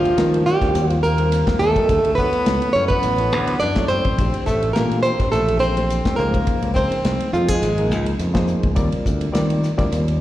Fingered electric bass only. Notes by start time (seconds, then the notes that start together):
Already playing: D2
0.17 D#3
0.62 D2
0.74 D#2
1.60 D#2
1.89 D2
2.04 D2
2.47 C#2
2.75 F#2
3.04 A1
3.33 D2
3.61 F#2
4.05 A1
4.18 A#1
4.48 A1
4.76 A#2
5.20 A1
5.32 A#1
6.18 C#2
6.62 C#2
7.05 C2
7.33 F2
7.62 G#1
7.91 C#2
8.19 F2
8.64 C#2
8.77 D#2
9.06 D2
9.34 D#3
9.79 D2
9.92 D#2